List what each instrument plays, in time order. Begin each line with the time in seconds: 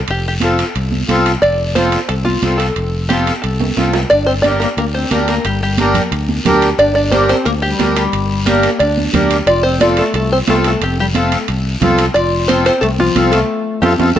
0.08 fingered electric bass F1, five-string banjo G4, high timbale, long guiro
0.28 five-string banjo G4
0.40 accordion C4 F4 A4, five-string banjo A4, high conga, high timbale, short guiro
0.59 high timbale, short guiro
0.75 fingered electric bass C2, high timbale, long guiro
0.92 high conga
1.08 fingered electric bass C2, accordion C4 F4 A4, high conga, high timbale, short guiro
1.26 high timbale, short guiro
1.42 fingered electric bass F1, five-string banjo D5, high timbale, long guiro
1.75 accordion C4 F4 A4, five-string banjo C5, high conga, high timbale, short guiro
1.92 high timbale, short guiro
2.09 fingered electric bass C2, five-string banjo A4, high timbale, long guiro
2.25 five-string banjo F4, high conga
2.42 fingered electric bass C2, accordion C4 F4 A4, high conga, high timbale, low timbale, short guiro
2.58 five-string banjo A4, high timbale, short guiro
2.76 fingered electric bass F1, high timbale, long guiro
3.09 accordion C4 F4 A4, five-string banjo G4, high conga, high timbale, short guiro
3.27 high timbale, short guiro
3.42 fingered electric bass C2, five-string banjo A4, high timbale, long guiro
3.60 high conga, high timbale
3.77 fingered electric bass C2, accordion C4 F4 A4, high conga, high timbale, short guiro
3.93 low timbale, short guiro
4.10 fingered electric bass G1, clarinet D4, five-string banjo D5, high timbale, long guiro
4.26 clarinet C4, five-string banjo C5
4.42 accordion D4 G4 A#4, clarinet D4, five-string banjo D5, high conga, high timbale, short guiro
4.60 clarinet A#3, five-string banjo A#4, high timbale, short guiro
4.77 fingered electric bass D2, clarinet A#3, five-string banjo A#4, high timbale, long guiro
4.94 clarinet C4, five-string banjo C5
5.11 fingered electric bass D2, clarinet A#3, accordion D4 G4 A#4, five-string banjo A#4, high conga, high timbale, short guiro
5.28 clarinet A#3, five-string banjo A#4, high timbale, short guiro
5.45 fingered electric bass G1, clarinet G3, five-string banjo G4, high timbale, long guiro
5.63 clarinet G3, five-string banjo G4
5.78 clarinet A#3, accordion D4 G4 A#4, five-string banjo A#4, high conga, high timbale, short guiro
5.94 low conga, high timbale, short guiro
6.12 fingered electric bass D2, high timbale, long guiro
6.29 high conga
6.45 fingered electric bass D2, accordion D4 G4 A#4, high conga, low conga, high timbale, low timbale, short guiro
6.62 high timbale, short guiro
6.78 fingered electric bass G1, clarinet D4, five-string banjo D5, high timbale, long guiro
6.95 clarinet D4, five-string banjo D5
7.11 accordion D4 G4 A#4, clarinet G4, five-string banjo C5, high conga, high timbale, short guiro
7.29 clarinet C4, five-string banjo C5, high timbale, short guiro
7.45 fingered electric bass D2, clarinet A#3, five-string banjo A#4, high timbale, long guiro
7.62 clarinet G3, five-string banjo G4
7.79 fingered electric bass D2, accordion D4 G4 A#4, high conga, high timbale, low timbale, short guiro
7.96 clarinet G3, five-string banjo G4, high timbale, short guiro
8.12 fingered electric bass G1, high timbale, long guiro
8.46 clarinet A#3, accordion D4 G4 A#4, five-string banjo A#4, high conga, high timbale, short guiro
8.63 high timbale, short guiro
8.79 fingered electric bass D2, clarinet D4, five-string banjo D5, high timbale, long guiro
8.97 high conga
9.13 fingered electric bass D2, accordion D4 G4 A#4, high conga, low conga, high timbale, short guiro
9.31 high timbale, short guiro
9.46 fingered electric bass F1, clarinet F4, five-string banjo D5, high timbale, long guiro
9.63 clarinet C4, five-string banjo C5
9.80 accordion C4 F4 A4, clarinet F4, five-string banjo D5, high conga, high timbale, short guiro
9.97 clarinet A3, five-string banjo A4, high timbale, short guiro
10.14 fingered electric bass C2, clarinet A3, five-string banjo A4, high timbale, long guiro
10.32 clarinet C4, five-string banjo C5
10.47 fingered electric bass C2, clarinet A3, accordion C4 F4 A4, five-string banjo A4, high conga, high timbale, low timbale, short guiro
10.64 clarinet A3, five-string banjo A4, high timbale, short guiro
10.81 fingered electric bass F1, clarinet C4, five-string banjo G4, high timbale, long guiro
10.99 clarinet G3, five-string banjo G4
11.14 clarinet A3, accordion C4 F4 A4, five-string banjo A4, high conga, high timbale, short guiro
11.32 high timbale, short guiro
11.48 fingered electric bass C2, high timbale, long guiro
11.81 fingered electric bass C2, accordion C4 F4 A4, high conga, low conga, high timbale, low timbale, short guiro
11.98 high timbale, short guiro
12.14 fingered electric bass F1, clarinet F4, five-string banjo D5, high timbale, long guiro
12.48 accordion C4 F4 A4, clarinet C4, five-string banjo C5, high conga, high timbale, short guiro
12.65 clarinet C4, five-string banjo C5, high timbale, short guiro
12.81 fingered electric bass C2, clarinet A3, five-string banjo A4, high timbale, long guiro
12.99 clarinet F3, five-string banjo F4, high conga
13.15 fingered electric bass C2, accordion C4 F4 A4, high conga, high timbale, short guiro
13.31 clarinet A3, five-string banjo A4, high timbale, short guiro
13.82 fingered electric bass F2, clarinet C4, accordion C4 F4 A4, five-string banjo G4, high conga, high timbale, long guiro
13.99 fingered electric bass F2, accordion C4 F4 A4, high conga, high timbale, long guiro
14.16 fingered electric bass F2, five-string banjo A4, high timbale